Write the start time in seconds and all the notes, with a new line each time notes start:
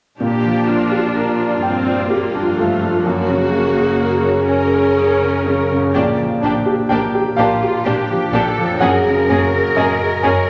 0.19 A#2 D4 G4
0.43 F3
0.67 G3 D4 F4
0.90 D4 G4
1.15 F4 A#4
1.38 D4 D5
1.62 G2 C4 F4 G5
1.86 D4 D5
2.09 G3 A#3 G4
2.33 F3 D4
2.57 F3 G3 A3
2.81 F3 D4
3.04 F#2 A#3 F#4
3.28 C#3
3.52 A#3 C#4
3.76 C#4 G#4
4.00 G#4 A#4
4.23 C#4 C#5
4.48 C#4 G#4 A#4 G#5
4.72 C#4 C#5
4.96 A#3 G#4
5.20 C#3 C#4
5.45 C#3 A#3 C#5
5.70 C#3 C#4
5.77 A#2
5.81 A#3
5.86 D4
5.90 G4
5.94 A#1 A#2 A#3 D4 G4 D5
6.19 F3
6.41 A#1 A#3 D4 G4
6.66 G4
6.89 A#1 A#3 D4 G4 A#4 G5
7.15 G4
7.36 A#1 A#3 D4 F4 G4 A#4 F5
7.63 G4
7.85 A#1 A#3 D4 G4
8.10 F3
8.32 A#1 A#3 D4 G4 A4
8.58 F3
8.64 F#2
8.68 A#3
8.73 C#4
8.77 F#2 C#4 G#4 F#5
8.81 F#2 A#3 G#4 A#4
9.07 C#3
9.28 F#2 A#3 C#4 G#4
9.55 G#4
9.75 F#2 A#3 C#4 G#4 A#4 D#5
10.02 G#4
10.22 F#2 A#3 C#4 G#4 A#4 C#5